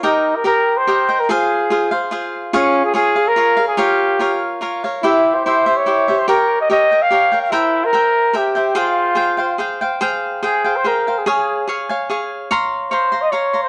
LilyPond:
<<
  \new Staff \with { instrumentName = "Cavaquinho" } { \time 3/4 \key f \minor \tempo 4 = 145 <g' bes' ees'' g''>4 <g' bes' ees'' g''>4 <g' bes' ees'' g''>8 <bes' ees'' g''>8 | <f' aes' c'' f''>4 <f' aes' c'' f''>8 <aes' c'' f''>8 <f' aes' c'' f''>4 | <f' aes' des'' f''>4 <f' aes' des'' f''>8 <aes' des'' f''>8 <f' aes' des'' f''>8 <aes' des'' f''>8 | <f' bes' des'' f''>4 <f' bes' des'' f''>4 <f' bes' des'' f''>8 <bes' des'' f''>8 |
<e' g' c'' e''>4 <e' g' c'' e''>8 <g' c'' e''>8 <e' g' c'' e''>8 <g' c'' e''>8 | <g' bes' des'' g''>4 <g' bes' des'' g''>8 <bes' des'' g''>8 <g' bes' des'' g''>8 <bes' des'' g''>8 | <bes' c'' e'' g''>4 <bes' c'' e'' g''>4 <bes' c'' e'' g''>8 <c'' e'' g''>8 | <aes' c'' f'' g''>4 <aes' c'' f'' g''>8 <c'' f'' g''>8 <aes' c'' f'' g''>8 <c'' f'' g''>8 |
<aes' c'' f'' g''>4 <aes' c'' f'' g''>8 <c'' f'' g''>8 <aes' c'' f'' g''>8 <c'' f'' g''>8 | <aes' des'' f'' aes''>4 <aes' des'' f'' aes''>8 <des'' f'' aes''>8 <aes' des'' f'' aes''>4 | <des'' f'' bes'' c'''>4 <des'' f'' bes'' c'''>8 <f'' bes'' c'''>8 <des'' f'' bes'' c'''>8 <f'' bes'' c'''>8 | }
  \new Staff \with { instrumentName = "Trumpet" } { \time 3/4 \key f \minor ees'8. bes'16 bes'8. c''4 bes'16 | aes'4. r4. | des'8. aes'16 aes'8. bes'4 aes'16 | g'4. r4. |
e'8. c''16 c''8. des''4 c''16 | bes'8. ees''16 ees''8. f''4 f''16 | e'8. bes'4~ bes'16 g'4 | f'2 r4 |
r4 aes'8. c''16 bes'8. aes'16 | aes'4 r2 | r4 c''8. ees''16 des''8. c''16 | }
>>